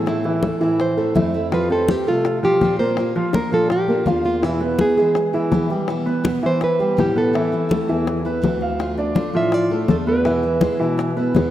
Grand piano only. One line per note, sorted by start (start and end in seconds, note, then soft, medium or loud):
0.00 0.18 A3 medium
0.00 0.18 A4 medium
0.25 0.40 E3 medium
0.25 0.40 E4 medium
0.43 0.58 A3 medium
0.43 0.58 A4 medium
0.61 0.91 E3 medium
0.61 0.91 E4 medium
0.97 1.12 A3 medium
0.97 1.12 A4 medium
1.15 1.45 E4 medium
1.15 1.46 E5 medium
1.52 1.67 F3 medium
1.52 1.67 F4 medium
1.70 2.00 C4 medium
1.70 2.00 C5 medium
2.07 2.37 A3 medium
2.07 2.37 A4 medium
2.43 2.73 F3 medium
2.43 2.73 F4 medium
2.79 3.09 A#3 medium
2.79 3.09 A#4 medium
3.16 3.31 F3 medium
3.16 3.31 F4 medium
3.34 3.49 A#3 medium
3.34 3.49 A#4 medium
3.52 3.82 F3 medium
3.52 3.82 F4 medium
3.88 4.03 A#3 medium
3.88 4.03 A#4 medium
4.06 4.36 F4 medium
4.06 4.36 F5 medium
4.42 4.57 E3 medium
4.42 4.58 E4 medium
4.60 4.91 B3 medium
4.60 4.91 B4 medium
4.97 5.27 G#3 medium
4.97 5.27 G#4 medium
5.34 5.64 E3 medium
5.34 5.64 E4 medium
5.69 5.85 G3 medium
5.69 5.85 G4 medium
6.06 6.36 B3 medium
6.06 6.36 B4 medium
6.43 6.73 E3 medium
6.43 6.73 E4 medium
6.79 7.09 G3 medium
6.79 7.09 G4 medium
7.16 7.31 B3 medium
7.16 7.31 B4 medium
7.34 7.64 E3 medium
7.34 7.64 E4 medium
7.71 7.86 A3 medium
7.71 7.86 A4 medium
7.89 8.19 E3 medium
7.89 8.19 E4 medium
8.26 8.55 B4 medium
8.62 8.92 F5 medium
8.98 9.28 D4 medium
8.98 9.28 D5 medium
9.35 9.64 F3 medium
9.35 9.64 F4 medium
9.71 10.01 A3 medium
9.71 10.01 A4 medium
10.07 10.22 B3 medium
10.07 10.22 B4 medium
10.25 10.55 E3 medium
10.25 10.55 E4 medium
10.61 10.76 G#3 medium
10.61 10.77 G#4 medium
10.80 11.10 E3 medium
10.80 11.10 E4 medium
11.16 11.46 B3 medium
11.16 11.46 B4 medium